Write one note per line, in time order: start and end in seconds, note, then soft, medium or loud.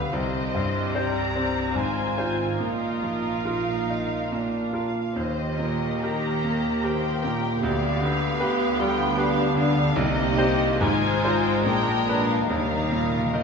0.00 0.14 D3 soft
0.00 0.15 G3 soft
0.00 0.13 B3 soft
0.00 0.14 G4 soft
0.00 0.12 B4 medium
0.00 0.15 B4 medium
0.00 0.11 F5 medium
0.12 1.74 C2 medium
0.12 1.74 C3 medium
0.12 2.56 C4 medium
0.12 1.74 G4 medium
0.12 0.94 C5 medium
0.12 0.96 D#5 medium
0.55 1.21 G2 soft
0.94 1.32 G4 soft
0.94 1.32 C5 medium
0.94 1.77 D5 medium
0.94 1.77 A#5 medium
1.36 1.77 C4 soft
1.75 2.59 G#1 soft
1.75 2.56 G#2 soft
1.75 2.58 G#2 medium
1.75 4.95 F4 soft
1.75 2.59 C5 medium
1.75 2.60 G#5 medium
2.18 2.56 F4 soft
2.18 2.56 C5 soft
2.60 4.96 A#1 soft
2.60 4.95 A#2 soft
2.60 4.28 A#2 soft
2.60 4.32 D#4 soft
2.60 4.70 A#4 soft
2.60 4.73 F5 medium
3.02 3.72 F3 soft
3.45 3.85 F4 soft
3.45 3.85 A#4 soft
3.90 4.32 D#4 soft
4.32 5.13 A#2 soft
4.32 4.95 D4 soft
4.73 5.11 F4 soft
4.73 5.12 A#4 soft
4.73 5.15 F5 medium
5.15 7.60 D#2 medium
5.15 7.60 D#3 medium
5.15 7.60 A#3 soft
5.15 9.94 G4 soft
5.15 5.55 C5 soft
5.15 6.03 D#5 medium
5.59 6.28 A#2 soft
5.59 6.02 A#4 soft
6.02 6.84 G4 medium
6.02 6.40 G4 soft
6.02 6.41 A#4 soft
6.02 6.84 A#5 medium
6.44 7.08 A#3 soft
6.83 7.20 G4 soft
6.83 7.20 A#4 soft
6.83 7.23 C5 medium
6.83 7.64 G5 medium
7.23 7.64 A#2 medium
7.23 7.63 A#4 medium
7.62 9.93 D2 medium
7.62 9.98 D2 medium
7.62 9.98 D3 medium
7.62 9.98 B3 medium
7.62 8.02 D5 medium
7.62 8.78 F5 medium
8.01 8.64 D3 medium
8.01 8.41 B4 medium
8.40 8.76 G4 medium
8.40 8.80 G4 medium
8.40 8.76 B4 medium
8.79 9.42 G3 medium
8.79 9.19 F4 medium
8.79 9.18 G5 medium
9.17 9.96 D4 medium
9.17 9.53 G4 medium
9.17 9.53 B4 medium
9.17 9.56 F5 medium
9.56 9.97 D3 medium
9.56 9.96 F5 medium
9.96 10.79 C2 medium
9.96 10.81 C2 medium
9.96 10.81 C3 medium
9.96 10.81 A#3 medium
9.96 10.83 D#4 medium
9.96 10.81 G4 medium
9.96 10.82 D#5 loud
10.38 10.78 G4 medium
10.38 10.78 C5 medium
10.81 11.63 G#1 medium
10.81 11.61 G#2 medium
10.81 11.63 G#2 medium
10.81 12.48 G#3 medium
10.81 11.65 F4 medium
10.81 11.65 C5 medium
10.81 11.26 G#5 medium
11.25 11.61 F4 medium
11.25 11.61 C5 medium
11.25 11.37 A#5 medium
11.36 11.46 G#5 medium
11.45 11.55 G5 medium
11.55 11.65 G#5 medium
11.64 12.48 A#1 medium
11.64 12.48 A#2 medium
11.64 12.46 A#2 medium
11.64 12.46 D4 medium
11.64 12.46 A#4 medium
11.64 12.26 G5 medium
12.09 12.46 D4 medium
12.09 12.46 B4 medium
12.27 12.48 F5 medium
12.47 13.43 D#2 medium
12.47 12.56 D#3 soft
12.47 13.43 D#3 medium
12.47 13.23 G3 medium
12.47 13.25 D#4 soft
12.47 13.43 A#4 medium
12.47 13.33 F5 medium
12.58 12.63 D#3 soft
12.65 12.72 D#3 soft
12.73 12.79 D#3 soft
12.80 12.87 D#3 soft
12.88 13.43 A#2 soft
12.88 12.94 D#3 soft
12.95 13.01 D#3 soft
13.03 13.10 D#3 soft
13.11 13.18 D#3 soft
13.19 13.25 D#3 soft
13.26 13.33 D#3 soft
13.34 13.41 D#3 soft
13.34 13.43 G3 medium
13.34 13.43 D#4 soft
13.34 13.43 A#4 medium
13.34 13.43 D#5 medium